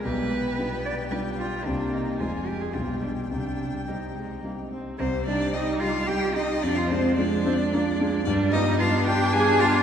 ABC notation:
X:1
M:3/4
L:1/16
Q:1/4=110
K:Cm
V:1 name="Violin"
g12- | g4 a4 g4- | g8- g2 z2 | c2 d2 e2 f2 g2 e2 |
d f c2 d8 | d2 e2 f2 g2 a2 f2 |]
V:2 name="Cello"
=B6 d2 B2 F2 | D2 E2 F2 G A F2 D2 | D4 E6 z2 | C2 D2 E2 F2 G2 E2 |
D F C2 D8 | D2 E2 F2 G2 A2 F2 |]
V:3 name="Grand piano"
[=B,,,=B,,]4 [G,DF]4 [G,DF]4 | [C,,C,G,CG]4 [F,,,F,,A,CF]4 [=B,,,=B,,G,DG]4 | [C,,C,]4 [G,CG]4 [G,CG]4 | C,,2 [G,EG]2 [G,EG]2 [G,EG]2 [G,EG]2 [G,EG]2 |
F,,2 [A,DF]2 [A,DF]2 [A,DF]2 [A,DF]2 [A,DF]2 | G,,2 [G,=B,F]2 [G,B,F]2 [G,B,F]2 [G,B,F]2 [G,B,F]2 |]
V:4 name="Viola" clef=bass
G,2 =B,6 G,4 | B,4 A,4 G,4 | G,4 G,2 A,2 B,2 C2 | G,12 |
F,4 A,2 C2 B,2 A,2 | G,4 D8 |]